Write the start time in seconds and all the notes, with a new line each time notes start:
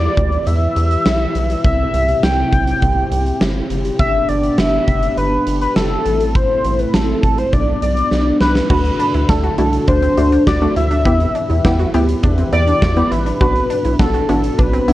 Already playing: E3 E4 G4 B4 D5
0.17 D2, kick, closed hi-hat
0.32 closed hi-hat
0.47 E2 E5, closed hi-hat
0.76 E2, closed hi-hat
0.91 closed hi-hat
1.06 B1, snare, closed hi-hat
1.35 B1, closed hi-hat
1.50 closed hi-hat
1.64 C2 C3 C4 E5, kick, closed hi-hat
1.94 C2, closed hi-hat
2.08 closed hi-hat
2.23 C2 G5, snare, closed hi-hat
2.53 B1, kick, closed hi-hat
2.67 closed hi-hat
2.82 C2, kick, closed hi-hat
3.11 C2, closed hi-hat
3.26 closed hi-hat
3.41 G1, snare, closed hi-hat
3.70 F#1, closed hi-hat
3.85 closed hi-hat
4.00 G1 B3 D4 E5, kick, closed hi-hat
4.29 G1 D5, closed hi-hat
4.44 closed hi-hat
4.58 G1 E5, snare, closed hi-hat
4.88 F#1, kick, closed hi-hat
5.03 closed hi-hat
5.17 G1 B4, closed hi-hat
5.47 G1, closed hi-hat
5.62 B4, closed hi-hat
5.76 F#1 A4, snare, closed hi-hat
6.06 A1 A3 C4 E4, closed hi-hat
6.20 closed hi-hat
6.35 C5, kick, closed hi-hat
6.64 A1, closed hi-hat
6.79 B4, closed hi-hat
6.94 A1 A4, snare, closed hi-hat
7.23 A1, kick, closed hi-hat
7.38 C5, closed hi-hat
7.53 B1 F#3 B3 D4 D5, kick, closed hi-hat
7.82 B1 D5, closed hi-hat
7.97 closed hi-hat
8.11 B1, snare
8.41 C2 B4, snare
8.56 snare
8.70 D2 D3 A3 D4 F#4 A4 B4, kick, crash
8.85 closed hi-hat
9.00 D4, closed hi-hat
9.14 D2 E4, closed hi-hat
9.29 D2 A3 D4 A4, kick, snare
9.44 F#4, closed hi-hat
9.58 C2 A3 D4 E4 F#4, closed hi-hat
9.73 closed hi-hat
9.88 D2 D4 C5, kick, closed hi-hat
10.02 C4, closed hi-hat
10.17 D2 A3 D4 F#4, closed hi-hat
10.32 D4, closed hi-hat
10.47 D2 F#4 D5, kick, snare
10.61 A3 D4 F#4, closed hi-hat
10.76 D2 E4 E5, closed hi-hat
10.91 D4, closed hi-hat
11.05 E2 E3 B3 E4 G4 B4, kick, closed hi-hat
11.20 closed hi-hat
11.35 D4, closed hi-hat
11.50 E2 E4, closed hi-hat
11.64 E2 B3 E4 G4, kick, snare
11.79 F#4, closed hi-hat
11.94 D2 B3 E4 G4, closed hi-hat
12.08 closed hi-hat
12.23 E2 D4, kick, closed hi-hat
12.38 C4, closed hi-hat
12.53 E2 B3 E4 G4 D5, closed hi-hat
12.67 D4, closed hi-hat
12.82 E2 F#4, kick, snare
12.96 B3 E4 G4, closed hi-hat
13.11 A1 E4 B4, closed hi-hat
13.26 D4, closed hi-hat
13.41 B1 B3 D4 F#4 B4, kick, closed hi-hat
13.56 closed hi-hat
13.70 D4, closed hi-hat
13.85 B1 E4, closed hi-hat
14.00 B1 B3 D4 F#4 A4, kick, snare
14.14 F#4, closed hi-hat
14.29 A1 B3 D4 E4 F#4, closed hi-hat
14.44 closed hi-hat
14.58 B1 D4 B4, kick, closed hi-hat
14.73 C4, closed hi-hat
14.88 B1 B3 D4 E4, closed hi-hat